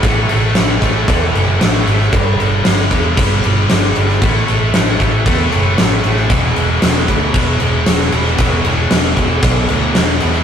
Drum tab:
CC |x-x-x-x-x-x-x-x-|x-x-x-x-x-x-x-x-|x-x-x-x-x-x-x-x-|x-x-x-x-x-x-x-x-|
SD |----o-------oo-o|----o-------o--o|----o-------oo-o|----o-------oo-o|
BD |o-----o-o-------|o-----o-o-------|o-----o-o-------|o-----o-o-------|

CC |x-x-x-x-x-x-x-x-|
SD |----o-------oo-o|
BD |o-----o-o-------|